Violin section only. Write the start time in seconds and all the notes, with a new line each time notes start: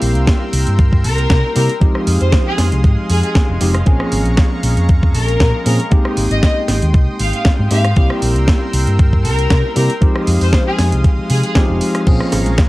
1.04 A#4
1.56 A#4
2.21 C5
2.47 G#4
3.10 G#4
3.23 G#4
5.15 A#4
5.66 A#4
6.31 D#5
6.43 D#5
7.20 F5
7.34 F5
7.71 F5
9.25 A#4
9.76 A#4
10.41 C5
10.67 G#4
11.30 G#4
11.44 G#4